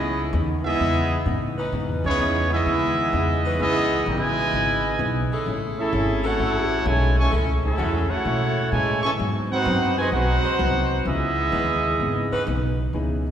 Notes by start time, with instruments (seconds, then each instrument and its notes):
Already playing: upright bass C#2, hollow-body jazz guitar C#3 E3 B3 D#4, saxophone section E3 C#4 B4 D#5, trombone section G#3 B3 E4, trumpet section B3 E4 G#4 D#5
0.33 upright bass D#2, hollow-body jazz guitar C#3 E3 B3 D#4
0.64 trombone section G#3 B3 E4, trumpet section B3 G#4 D#5 E5
0.79 upright bass E2, hollow-body jazz guitar C#3 E3 B3 D#4
1.26 upright bass A2, hollow-body jazz guitar C#3 E3 B3 D#4
1.57 saxophone section E3 C#4 D#4 B4
1.72 upright bass G#2, hollow-body jazz guitar C#3 E3 B3 D#4
1.88 upright bass E2
2.04 upright bass C#2, trombone section E3 G#3 C#4, trumpet section B3 E4 G#4 C#5
2.19 upright bass E2, hollow-body jazz guitar C#3 E3 B3 D#4
2.49 trombone section G#3 B3 E4, trumpet section B3 G#4 D#5 E5
2.66 upright bass D#2, hollow-body jazz guitar C#3 E3 B3 D#4
3.13 upright bass E2, hollow-body jazz guitar C#3 E3 B3 D#4
3.45 saxophone section E3 C#4 E4 B4
3.59 upright bass C#2, hollow-body jazz guitar C#3 E3 B3 D#4, trombone section G#3 B3 E4, trumpet section B3 G#4 D#5 E5
4.06 upright bass A1, trombone section B2 E3 G#3, hollow-body jazz guitar C#3 E3 B3 D#4, trumpet section E4 B4 D#5 G#5
4.52 upright bass G#1, hollow-body jazz guitar C#3 E3 B3 D#4
4.99 upright bass B1, hollow-body jazz guitar C#3 E3 B3 D#4
5.31 saxophone section C#4 E4 G#4 A4, muted upright bass stroke
5.46 upright bass A1, hollow-body jazz guitar A2 G#3 C#4 E4
5.77 trombone section A3 C#4 E4, trumpet section C#4 G#4 A4 E5
5.93 upright bass G#1, hollow-body jazz guitar A2 G#3 C#4 E4
6.22 saxophone section A3 C#4 E4 A4, trombone section A3 C#4 F#4, trumpet section E4 A4 C#5 F#5
6.38 upright bass A1, hollow-body jazz guitar A2 G#3 C#4 E4
6.86 upright bass B1, hollow-body jazz guitar A2 G#3 C#4 E4, trombone section C#3 E3 G#3, trumpet section E4 A4 C#5 G#5
7.19 trombone section E3 G#3 C#4, trumpet section A4 E5 G#5 C#6
7.31 upright bass C#2, hollow-body jazz guitar A2 G#3 C#4 E4, saxophone section G#3 C#4 E4 A4
7.63 trombone section A3 C#4 E4, trumpet section C#4 G#4 A4 E5
7.77 upright bass E2, hollow-body jazz guitar A2 G#3 C#4 E4, saxophone section G#3 C#4 E4 F#4
8.10 trombone section A3 C#4 F#4, trumpet section E4 A4 C#5 F#5, muted upright bass stroke
8.25 hollow-body jazz guitar A2 G#3 C#4 E4, upright bass B2
8.71 upright bass A2, hollow-body jazz guitar A2 G#3 C#4 E4, trombone section C#3 E3 G#3, trumpet section E4 A4 C#5 G#5
9.03 trombone section E3 G#3 C#4, trumpet section A4 E5 G#5 C#6
9.19 hollow-body jazz guitar G#2 F#3 B3 C4, upright bass G#2
9.50 trombone section C4 D#4 F#4, trumpet section D#4 B4 C5 F#5
9.65 upright bass F#2, hollow-body jazz guitar G#2 F#3 B3 C4
9.97 trombone section C3 D#3 G#3, saxophone section G#3 C4 F#4 B4, trumpet section F#4 C5 D#5 G#5
10.12 upright bass B1, hollow-body jazz guitar G#2 F#3 B3 C4, trombone section C4 D#4 F#4, trumpet section D#4 B4 C5 F#5
10.43 saxophone section G#3 C4 F#4 C5, muted upright bass stroke
10.59 upright bass C2, hollow-body jazz guitar G#2 F#3 B3 C4
11.05 upright bass C#2, hollow-body jazz guitar C#3 E3 B3 D#4, trombone section G#3 B3 E4, trumpet section B3 G#4 D#5 E5
11.51 upright bass D#2, hollow-body jazz guitar C#3 E3 B3 D#4, saxophone section E3 C#4 D#4 B4
12.00 upright bass G#1, hollow-body jazz guitar C#3 E3 B3 D#4
12.32 saxophone section E3 C#4 D#4 B4, muted upright bass stroke
12.47 upright bass B1, hollow-body jazz guitar C#3 E3 B3 D#4
12.93 upright bass C#2, hollow-body jazz guitar C#3 E3 B3 D#4, grand piano E3 B3 C#4 D#4 G#4